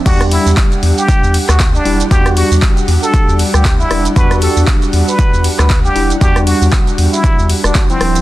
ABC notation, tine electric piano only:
X:1
M:4/4
L:1/16
Q:"Swing 16ths" 1/4=117
K:Em
V:1 name="Tine electric piano"
[G,DG]12 z2 [G,DE]2 | [G,DF]12 z2 [G,DE]2 | [G,DF]12 z2 [G,DE]2 | [G,DF]12 [G,DF] [=F,CE]3 |]